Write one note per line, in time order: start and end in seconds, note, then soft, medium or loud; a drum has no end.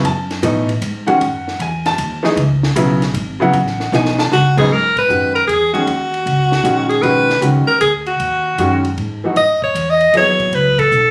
0.03 0.41 F#2 medium
0.03 0.65 A5 loud
0.03 ride medium
0.31 snare soft
0.31 ride soft
0.43 0.81 A2 loud
0.43 0.66 B2 medium
0.43 0.66 E3 medium
0.43 0.67 A3 medium
0.43 0.67 D#4 medium
0.43 hi-hat pedal medium
0.43 ride medium
0.69 ride medium
0.81 1.20 G#2 medium
0.81 hi-hat pedal medium
0.81 ride medium
1.07 1.19 D#3 medium
1.07 1.20 G#3 medium
1.07 1.20 C#4 medium
1.07 1.20 F#4 medium
1.07 1.56 F#5 medium
1.07 ride soft
1.21 1.59 F#2 medium
1.21 ride medium
1.48 snare soft
1.59 1.97 E2 loud
1.59 1.86 G#5 medium
1.59 ride medium
1.86 2.22 A5 loud
1.86 snare soft
1.86 ride medium
1.98 2.35 D#2 medium
1.98 hi-hat pedal medium
1.98 ride medium
2.23 2.35 E3 medium
2.23 2.36 A3 medium
2.23 2.36 D#4 medium
2.23 2.36 G#4 medium
2.23 snare medium
2.36 2.75 C#2 medium
2.36 ride medium
2.63 snare medium
2.76 3.13 B1 loud
2.76 2.99 C#3 medium
2.76 3.00 F#3 medium
2.76 3.00 B3 medium
2.76 3.00 E4 medium
2.76 hi-hat pedal medium
2.76 ride medium
3.02 snare soft
3.02 ride medium
3.14 3.52 G#1 medium
3.14 hi-hat pedal medium
3.14 ride medium
3.40 3.52 C#3 medium
3.40 3.53 F#3 medium
3.40 3.53 B3 medium
3.40 3.53 E4 medium
3.40 3.90 F#5 loud
3.53 3.91 A1 medium
3.53 ride medium
3.67 snare soft
3.80 snare soft
3.92 4.30 B1 loud
3.92 4.16 B2 medium
3.92 4.16 E3 medium
3.92 4.16 A3 medium
3.92 4.17 D#4 medium
3.92 4.19 G#5 loud
3.92 snare medium
3.92 hi-hat pedal medium
4.05 snare medium
4.19 4.55 A5 loud
4.19 snare loud
4.31 4.69 C#2 medium
4.31 4.56 F#4 loud
4.31 snare medium
4.57 4.69 G#2 medium
4.57 4.70 C#3 medium
4.57 4.70 F#3 medium
4.57 4.70 B3 medium
4.57 4.70 D#4 medium
4.57 4.74 G#4 medium
4.57 kick medium
4.57 crash medium
4.71 5.09 G#2 medium
4.71 4.97 A#4 loud
4.96 5.34 B4 medium
4.96 kick medium
4.96 ride medium
5.09 5.47 F#2 medium
5.09 5.32 D#3 medium
5.09 5.33 G#3 soft
5.09 5.33 C#4 medium
5.09 5.33 F#4 medium
5.09 hi-hat pedal medium
5.35 5.47 A#4 medium
5.35 ride soft
5.47 5.86 E2 medium
5.47 5.72 G#4 medium
5.47 hi-hat pedal medium
5.47 ride medium
5.73 5.86 D#3 medium
5.73 5.86 G#3 medium
5.73 5.86 C#4 medium
5.73 6.87 F#4 medium
5.73 5.87 G#4 medium
5.73 ride soft
5.87 6.25 D#2 medium
5.87 ride medium
6.14 ride soft
6.26 6.63 C#2 medium
6.26 ride medium
6.52 snare medium
6.63 7.02 A#1 medium
6.63 7.00 D#3 medium
6.63 7.01 G#3 medium
6.63 7.02 C#4 medium
6.63 7.02 F#4 medium
6.63 hi-hat pedal medium
6.63 ride medium
6.89 7.04 G#4 medium
6.89 ride soft
7.02 7.41 B1 medium
7.02 7.26 D#3 medium
7.02 7.27 G#3 medium
7.02 7.27 C#4 medium
7.02 7.27 F#4 medium
7.02 7.42 B4 loud
7.02 ride medium
7.30 snare medium
7.41 7.66 C#2 medium
7.41 7.65 D#3 medium
7.41 7.66 G#3 medium
7.41 7.66 C#4 medium
7.41 7.66 F#4 medium
7.41 hi-hat pedal medium
7.41 ride medium
7.67 7.80 A#4 medium
7.67 muted upright bass stroke soft
7.67 ride soft
7.81 8.19 D2 medium
7.81 7.93 G#4 medium
7.81 hi-hat pedal medium
7.81 ride medium
8.06 8.81 F#4 medium
8.06 ride soft
8.20 8.58 D#2 medium
8.20 ride medium
8.58 8.97 F#2 medium
8.58 8.82 D#3 medium
8.58 8.83 G#3 medium
8.58 8.83 C#4 medium
8.58 8.83 F#4 medium
8.58 hi-hat pedal medium
8.58 ride medium
8.85 ride soft
8.97 9.35 G#2 medium
8.97 ride medium
9.24 9.36 E3 medium
9.24 9.36 A3 medium
9.24 9.36 D#4 soft
9.24 9.37 F#4 medium
9.36 9.74 F#2 medium
9.36 9.61 D#5 loud
9.36 ride medium
9.62 9.91 C#5 medium
9.62 kick medium
9.74 10.13 E2 medium
9.74 hi-hat pedal medium
9.74 ride medium
9.90 10.15 D#5 loud
10.01 ride soft
10.13 10.52 D#2 medium
10.13 10.74 F#3 medium
10.13 10.74 B3 medium
10.13 10.74 E4 medium
10.13 10.74 G#4 medium
10.13 10.56 C#5 loud
10.13 hi-hat pedal medium
10.13 ride medium
10.40 kick medium
10.40 ride soft
10.52 10.91 C#2 medium
10.52 10.80 B4 medium
10.52 ride medium
10.79 11.11 A4 medium
10.79 kick medium
10.79 ride medium
10.92 11.11 B1 medium
10.92 hi-hat pedal medium